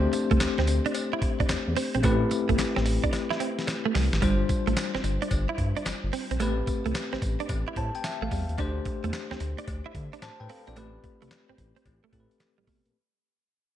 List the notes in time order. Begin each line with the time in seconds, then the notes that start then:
Already playing: A3 C4 D4 G4 C5
0.13 muted clean electric guitar stroke, closed hi-hat, tambourine
0.31 C2 A3, kick, closed hi-hat
0.40 D2, snare, clap, closed hi-hat, tambourine, cowbell
0.58 D2 C4, snare
0.67 muted clean electric guitar stroke, closed hi-hat, tambourine
0.86 D4, closed hi-hat
0.95 closed hi-hat, tambourine, cowbell
1.13 E4
1.22 muted clean electric guitar stroke, kick, closed hi-hat
1.40 D4, kick, closed hi-hat
1.49 E2, muted clean electric guitar stroke, snare, clap, closed hi-hat, tambourine, cowbell
1.68 E2
1.76 C4, open hi-hat, tambourine
1.94 A#1 C4, closed hi-hat
2.03 A1 A3 C4 E4 G4 B4, kick, closed hi-hat, tambourine, cowbell
2.31 muted clean electric guitar stroke, closed hi-hat, tambourine
2.49 G1 A3, kick, closed hi-hat
2.58 A1, snare, clap, closed hi-hat, tambourine, cowbell
2.76 A1 C4, snare
2.86 muted clean electric guitar stroke, open hi-hat, tambourine
3.04 D4, kick, closed hi-hat
3.13 muted clean electric guitar stroke, snare, closed hi-hat, cowbell
3.30 E4, snare
3.40 C4, closed hi-hat
3.59 snare, closed hi-hat
3.67 muted clean electric guitar stroke, snare, closed hi-hat, cowbell
3.85 A3
3.95 C2 G3, snare, open hi-hat
4.13 G#1, snare, closed hi-hat
4.21 G1 G3 D4 F4 C5, kick, closed hi-hat, tambourine, cowbell
4.49 muted clean electric guitar stroke, kick, closed hi-hat, tambourine
4.67 A1 A3, closed hi-hat
4.77 snare, clap, closed hi-hat, tambourine, cowbell
4.95 G1 C4, snare
5.04 G1, muted clean electric guitar stroke, closed hi-hat, tambourine
5.22 D4, closed hi-hat
5.31 G1, kick, closed hi-hat, tambourine, cowbell
5.49 E4
5.58 G2, muted clean electric guitar stroke, kick, closed hi-hat
5.76 D4, closed hi-hat
5.86 G1, muted clean electric guitar stroke, snare, clap, closed hi-hat, tambourine, cowbell
6.04 G1
6.13 C4, open hi-hat, tambourine
6.31 A#1 C4, closed hi-hat
6.40 A1 A3 B3 G4 B4, closed hi-hat, tambourine, cowbell
6.47 C4
6.67 muted clean electric guitar stroke, kick, closed hi-hat, tambourine
6.86 C2 A3, closed hi-hat
6.94 snare, clap, closed hi-hat, tambourine, cowbell
7.13 A1 C4, snare
7.22 A1, muted clean electric guitar stroke, kick, closed hi-hat, tambourine
7.40 D4, closed hi-hat
7.49 A1, muted clean electric guitar stroke, kick, closed hi-hat, tambourine, cowbell
7.68 E4
7.76 A2 C4 A5, kick, closed hi-hat
7.95 G5, closed hi-hat
8.04 E5, muted clean electric guitar stroke, snare, clap, closed hi-hat, tambourine, cowbell
8.22 A1 A3 F5
8.31 E2 G3, kick, open hi-hat, tambourine
8.49 D#2, closed hi-hat
8.58 D2 A3 D4 G4 C5, kick, closed hi-hat, cowbell
8.85 muted clean electric guitar stroke, kick, closed hi-hat
9.04 E2 A3, closed hi-hat
9.13 snare, clap, closed hi-hat, cowbell
9.31 D2 C4, snare
9.40 D2, muted clean electric guitar stroke, closed hi-hat
9.58 D4, closed hi-hat
9.68 D2, kick, closed hi-hat, cowbell
9.86 E4
9.95 D3, muted clean electric guitar stroke, kick, closed hi-hat
10.13 D4, closed hi-hat
10.22 A2 C5 A5, muted clean electric guitar stroke, snare, clap, closed hi-hat, cowbell
10.40 A2 B4 G5
10.49 C4 A4 F5, open hi-hat
10.67 A#1 C4 F4 D5, closed hi-hat
10.76 A1 A3 C4 G4 B4, closed hi-hat, cowbell
11.04 muted clean electric guitar stroke, kick, closed hi-hat
11.22 C2 A3, closed hi-hat
11.31 snare, clap, closed hi-hat, cowbell
11.49 A1 C4
11.58 A1, muted clean electric guitar stroke, kick, closed hi-hat
11.76 C4, closed hi-hat
11.86 A1, muted clean electric guitar stroke, kick, closed hi-hat, cowbell
12.04 A3
12.12 A2 A3 C4 G4 A4, kick, closed hi-hat
12.20 B4
12.31 closed hi-hat
12.40 muted clean electric guitar stroke, snare, clap, closed hi-hat, cowbell
12.58 A1 G3
12.67 B1 A3, kick, open hi-hat
12.86 A#1, closed hi-hat